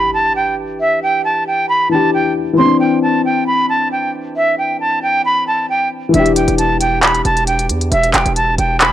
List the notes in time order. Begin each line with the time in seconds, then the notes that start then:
Already playing: E3 D4 G4 B5, impact
0.14 A5
0.36 G5
0.80 E5
1.03 G5
1.25 A5
1.47 G5
1.69 B5
1.89 E3 D4 A5
1.94 G4
2.14 G5
2.53 E3
2.58 C4 C6
2.63 D4
2.80 G5
3.03 A5
3.25 G5
3.47 B5
3.69 A5
3.92 G5
4.36 E5
4.58 G5
4.80 A5
5.03 G5
5.25 B5
5.47 A5
5.69 G5
6.09 E3
6.13 E1 D4 E5, closed hi-hat
6.19 G4
6.26 closed hi-hat
6.36 G5, closed hi-hat
6.48 E1, closed hi-hat
6.58 A5, closed hi-hat
6.80 G5, closed hi-hat
7.02 B5, clap, closed hi-hat
7.15 closed hi-hat
7.25 E1 A5, closed hi-hat
7.37 closed hi-hat
7.47 G5, closed hi-hat
7.59 closed hi-hat
7.69 E2, closed hi-hat
7.81 closed hi-hat
7.91 E1 E5, closed hi-hat
8.03 closed hi-hat
8.14 E1 G5, clap, closed hi-hat
8.26 E1, closed hi-hat
8.36 A5, closed hi-hat
8.58 E1 G5, closed hi-hat
8.80 B5, clap, closed hi-hat